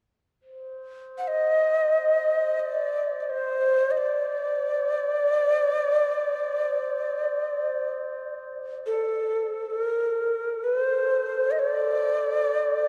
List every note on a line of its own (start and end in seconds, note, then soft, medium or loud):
0.41 8.50 C5 soft
1.18 1.29 F#5 medium
1.27 2.61 D#5 medium
2.59 3.20 D5 medium
3.20 3.31 D5 soft
3.30 3.92 C5 medium
3.91 3.99 D#5 soft
3.97 7.91 D5 medium
8.86 9.71 A4 medium
9.70 10.65 A#4 medium
10.64 12.88 A4 soft
10.64 10.78 B4 medium
10.73 12.88 C5 soft
10.78 11.53 C5 medium
11.51 11.61 D#5 medium
11.59 12.88 D5 medium